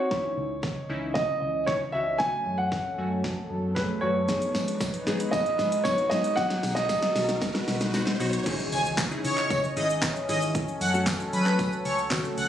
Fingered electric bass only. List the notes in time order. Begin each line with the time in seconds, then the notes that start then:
0.37 C#2
0.89 C#2
1.42 C#2
1.94 C#2
2.46 F#2
2.98 F#2
3.50 F#2
4.03 F#2
4.55 G#2
5.07 G#2
5.59 G#2
6.11 G#2
6.63 B1
7.16 B1
7.68 B1
8.20 B1
8.72 C#2
9.24 C#3
9.77 G#1
10.29 G#1
10.81 F#2
11.33 F#3
11.85 C#2
12.37 C#2